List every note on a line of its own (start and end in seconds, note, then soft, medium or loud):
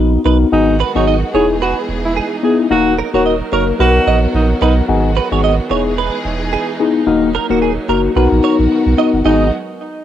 0.00 0.17 A#1 loud
0.00 0.19 B3 medium
0.00 0.20 D#4 medium
0.00 0.20 F#4 medium
0.00 0.20 A#4 loud
0.25 0.45 B1 medium
0.25 0.46 B3 medium
0.25 0.47 D#4 medium
0.25 0.47 F#4 medium
0.25 0.47 A#4 medium
0.25 0.36 B4 medium
0.52 0.83 G#1 loud
0.52 1.33 D#3 medium
0.52 1.33 F#3 medium
0.52 1.33 G#3 medium
0.52 0.74 B3 loud
0.52 2.68 B3 medium
0.52 0.74 D#4 medium
0.52 0.76 D#4 medium
0.52 1.33 F#4 medium
0.52 0.74 F#4 medium
0.52 0.74 G#4 loud
0.80 0.91 B4 medium
0.95 1.23 G#1 loud
0.95 1.15 B3 medium
0.95 1.15 D#4 medium
0.95 1.06 D#4 medium
0.95 1.15 F#4 medium
0.95 1.15 G#4 medium
0.95 1.04 C#5 medium
1.07 1.18 D#5 medium
1.34 1.73 E1 loud
1.34 2.69 E3 medium
1.34 2.69 G#3 medium
1.34 1.56 B3 medium
1.34 1.56 D#4 medium
1.34 3.77 D#4 medium
1.34 1.56 E4 medium
1.34 2.69 G#4 medium
1.34 1.56 G#4 medium
1.34 1.48 G#4 medium
1.34 1.46 C#5 medium
1.62 1.75 F#4 medium
1.62 1.81 B4 medium
1.89 2.20 E1 medium
2.05 2.15 E4 medium
2.17 2.35 G#4 medium
2.43 2.65 B3 medium
2.43 2.65 D#4 medium
2.43 2.65 E4 medium
2.43 2.65 G#4 medium
2.43 2.57 G#4 medium
2.70 3.01 D#1 loud
2.70 5.68 F#3 medium
2.70 2.92 A#3 loud
2.70 2.92 D#4 medium
2.70 2.92 F#4 medium
2.70 2.94 F#4 loud
2.70 4.87 A#4 medium
2.70 2.92 A#4 loud
2.98 3.09 A#4 medium
3.13 3.41 D#1 loud
3.13 3.33 A#3 medium
3.13 3.33 D#4 medium
3.13 3.33 F#4 medium
3.13 3.24 F#4 medium
3.13 3.33 A#4 medium
3.13 3.22 C#5 medium
3.26 3.36 D#5 medium
3.52 3.72 F#1 medium
3.52 3.74 A#3 medium
3.52 3.74 D#4 medium
3.52 3.74 F#4 medium
3.52 3.74 A#4 medium
3.52 3.66 A#4 medium
3.52 3.64 C#5 medium
3.79 3.99 B1 loud
3.79 4.88 D#3 medium
3.79 4.56 B3 medium
3.79 7.04 B3 medium
3.79 4.56 D#4 medium
3.79 4.87 F#4 medium
3.79 4.56 F#4 medium
3.79 4.20 F#4 loud
3.79 4.56 A#4 loud
3.79 3.91 B4 medium
4.07 4.26 A#1 medium
4.07 4.18 D#5 medium
4.34 4.54 A#1 medium
4.34 4.48 D#4 medium
4.61 4.81 B1 medium
4.61 4.83 B3 medium
4.61 4.83 D#4 medium
4.61 4.75 D#4 medium
4.61 4.83 F#4 medium
4.61 4.83 A#4 medium
4.61 4.73 B4 medium
4.88 5.19 G#1 loud
4.88 5.70 D#3 medium
4.88 5.69 G#3 medium
4.88 5.10 B3 loud
4.88 5.10 D#4 loud
4.88 5.70 F#4 medium
4.88 5.10 F#4 medium
4.88 5.10 G#4 loud
5.17 5.27 B4 medium
5.32 5.59 G#1 loud
5.32 5.51 B3 medium
5.32 5.51 D#4 medium
5.32 5.51 F#4 medium
5.32 5.51 G#4 medium
5.32 5.40 C#5 medium
5.44 5.55 D#5 medium
5.70 6.09 E1 loud
5.70 7.06 E3 medium
5.70 7.06 G#3 medium
5.70 5.92 B3 medium
5.70 5.92 D#4 medium
5.70 8.14 D#4 medium
5.70 5.92 E4 medium
5.70 7.06 G#4 medium
5.70 5.92 G#4 medium
5.70 5.82 C#5 medium
5.98 6.17 B4 medium
6.25 6.56 E1 medium
6.53 6.72 G#4 medium
6.79 7.01 B3 medium
6.79 7.01 D#4 medium
6.79 7.01 E4 medium
6.79 7.01 G#4 medium
7.06 7.38 D#1 loud
7.06 8.15 F#3 medium
7.06 7.28 A#3 loud
7.06 8.15 A#3 medium
7.06 7.28 D#4 medium
7.06 7.28 F#4 medium
7.06 7.29 A#4 loud
7.35 7.46 A#4 medium
7.50 7.78 D#1 loud
7.50 7.69 A#3 medium
7.50 7.69 D#4 medium
7.50 7.69 F#4 medium
7.50 7.58 F#4 medium
7.50 7.69 A#4 medium
7.62 7.73 G#4 medium
7.88 8.08 F#1 medium
7.88 8.10 A#3 medium
7.88 8.10 D#4 medium
7.88 8.10 F#4 medium
7.88 8.10 A#4 medium
7.88 8.00 A#4 medium
8.16 8.27 B1 loud
8.16 9.24 D#3 medium
8.16 9.24 F#3 medium
8.16 8.92 B3 medium
8.16 9.24 B3 medium
8.16 8.92 D#4 medium
8.16 9.24 F#4 medium
8.16 8.92 F#4 medium
8.16 9.24 A#4 medium
8.16 8.92 A#4 loud
8.16 8.27 B4 medium
8.32 8.40 A#1 loud
8.44 8.55 C#5 medium
8.59 8.67 A#1 medium
8.86 8.94 B1 loud
8.97 9.19 B3 medium
8.97 9.19 D#4 medium
8.97 9.19 F#4 medium
8.97 9.19 A#4 medium
8.97 9.09 D#5 medium
9.14 9.22 F#1 medium
9.25 9.50 G#1 loud
9.25 9.50 D#3 medium
9.25 9.50 F#3 medium
9.25 9.50 G#3 medium
9.25 9.46 B3 medium
9.25 9.50 B3 medium
9.25 9.46 D#4 medium
9.25 9.51 D#4 medium
9.25 9.50 F#4 medium
9.25 9.46 F#4 medium
9.25 9.46 G#4 loud
9.25 9.51 D#5 medium